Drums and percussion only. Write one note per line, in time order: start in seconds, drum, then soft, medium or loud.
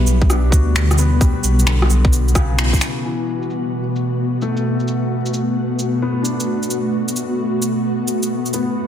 0.07 cabasa medium
0.22 kick loud
0.30 cross-stick medium
0.30 shaker medium
0.52 kick loud
0.52 cabasa medium
0.76 finger snap loud
0.76 shaker medium
0.91 cross-stick medium
0.91 shaker medium
0.98 cabasa medium
1.21 kick loud
1.21 shaker medium
1.44 cabasa medium
1.59 shaker medium
1.67 finger snap loud
1.67 shaker medium
1.82 cross-stick medium
1.90 cabasa medium
2.05 kick loud
2.13 shaker medium
2.28 shaker soft
2.35 kick loud
2.35 cross-stick medium
2.35 cabasa medium
2.59 finger snap loud
2.59 shaker medium
2.73 kick medium
2.73 shaker medium
2.81 finger snap medium
2.81 cabasa medium
3.04 shaker soft
3.42 shaker medium
3.50 shaker soft
3.96 shaker soft
4.42 shaker medium
4.57 shaker soft
4.80 shaker soft
4.88 shaker medium
5.26 shaker medium
5.34 shaker medium
5.79 shaker medium
6.25 shaker medium
6.40 shaker soft
6.63 shaker soft
6.70 shaker medium
7.08 shaker medium
7.16 shaker soft
7.62 shaker medium
8.08 shaker soft
8.23 shaker soft
8.46 shaker soft
8.53 shaker medium